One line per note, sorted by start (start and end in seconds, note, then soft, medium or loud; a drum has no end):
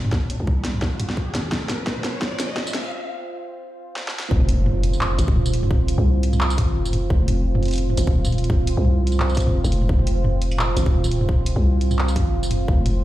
0.00 0.39 D#1 medium
0.00 13.04 C4 medium
0.00 13.04 F4 medium
0.00 13.04 C5 medium
0.00 riser medium
0.05 mid tom medium
0.12 kick medium
0.12 snare medium
0.30 closed hi-hat medium
0.40 1.26 C2 medium
0.40 mid tom medium
0.47 kick loud
0.65 snare medium
0.65 closed hi-hat medium
0.74 mid tom medium
0.82 kick loud
0.82 snare medium
1.00 closed hi-hat medium
1.00 mid tom medium
1.10 snare medium
1.17 kick medium
1.35 1.51 G#1 loud
1.35 snare medium
1.35 closed hi-hat medium
1.35 mid tom medium
1.52 2.38 F1 medium
1.52 kick medium
1.52 snare medium
1.70 snare medium
1.70 closed hi-hat medium
1.70 mid tom medium
1.87 kick loud
1.87 snare medium
1.97 mid tom soft
1.99 mid tom soft
2.02 snare medium
2.02 closed hi-hat medium
2.02 mid tom medium
2.22 kick loud
2.22 snare medium
2.32 mid tom medium
2.39 2.48 G1 medium
2.39 snare medium
2.39 closed hi-hat medium
2.39 tambourine medium
2.49 2.92 D#1 medium
2.56 kick loud
2.56 snare medium
2.67 mid tom soft
2.67 tambourine medium
2.74 snare medium
2.74 closed hi-hat medium
3.96 snare medium
4.08 snare medium
4.19 snare loud
4.31 5.17 F1 loud
4.31 kick loud
4.31 impact medium
4.41 mid tom medium
4.49 closed hi-hat medium
4.66 mid tom medium
4.83 closed hi-hat medium
4.93 tambourine soft
5.01 clap loud
5.01 mid tom medium
5.18 5.27 G1 medium
5.18 closed hi-hat medium
5.18 tambourine medium
5.28 5.97 D#1 medium
5.28 kick loud
5.36 mid tom medium
5.46 tambourine medium
5.54 closed hi-hat medium
5.63 mid tom medium
5.71 kick loud
5.88 closed hi-hat medium
5.98 6.59 C2 medium
5.98 mid tom medium
6.23 closed hi-hat medium
6.33 mid tom medium
6.33 tambourine soft
6.41 clap loud
6.50 tambourine medium
6.58 6.77 G#1 medium
6.58 kick loud
6.58 closed hi-hat medium
6.58 mid tom medium
6.76 7.10 F1 medium
6.85 tambourine medium
6.93 closed hi-hat medium
6.93 mid tom medium
7.10 7.96 F1 loud
7.10 kick loud
7.28 closed hi-hat medium
7.28 mid tom medium
7.55 mid tom medium
7.63 closed hi-hat soft
7.65 closed hi-hat soft
7.68 closed hi-hat soft
7.71 closed hi-hat soft
7.71 tambourine soft
7.74 closed hi-hat soft
7.76 closed hi-hat medium
7.78 closed hi-hat medium
7.90 mid tom medium
7.97 8.07 G1 medium
7.97 closed hi-hat medium
7.97 tambourine medium
8.07 8.76 D#1 medium
8.07 kick loud
8.25 mid tom medium
8.25 tambourine medium
8.32 closed hi-hat soft
8.38 closed hi-hat soft
8.44 closed hi-hat medium
8.50 kick loud
8.50 mid tom medium
8.67 closed hi-hat medium
8.77 9.48 C2 medium
8.85 mid tom medium
9.07 closed hi-hat medium
9.12 tambourine soft
9.20 clap loud
9.20 mid tom medium
9.30 tambourine soft
9.35 kick loud
9.35 closed hi-hat medium
9.35 tambourine soft
9.40 tambourine medium
9.47 9.63 F1 medium
9.47 mid tom medium
9.64 9.88 F1 loud
9.64 tambourine medium
9.72 closed hi-hat medium
9.82 mid tom medium
9.89 10.76 F1 loud
9.89 kick loud
9.99 mid tom soft
10.07 closed hi-hat medium
10.24 mid tom medium
10.42 closed hi-hat medium
10.51 tambourine soft
10.59 clap loud
10.59 mid tom medium
10.62 mid tom soft
10.65 mid tom soft
10.76 10.85 G1 medium
10.76 closed hi-hat medium
10.76 tambourine medium
10.86 11.55 D#1 medium
10.86 kick loud
10.94 mid tom soft
11.04 tambourine medium
11.11 closed hi-hat medium
11.21 mid tom medium
11.29 kick loud
11.46 closed hi-hat medium
11.56 12.18 C2 medium
11.56 mid tom medium
11.81 closed hi-hat medium
11.91 mid tom medium
11.91 tambourine soft
11.99 clap loud
12.08 tambourine medium
12.16 12.35 G#1 medium
12.16 kick loud
12.16 closed hi-hat medium
12.16 mid tom medium
12.33 12.67 F1 medium
12.43 tambourine medium
12.51 closed hi-hat medium
12.51 mid tom medium
12.68 13.04 F1 loud
12.68 kick loud
12.86 closed hi-hat medium
12.86 mid tom medium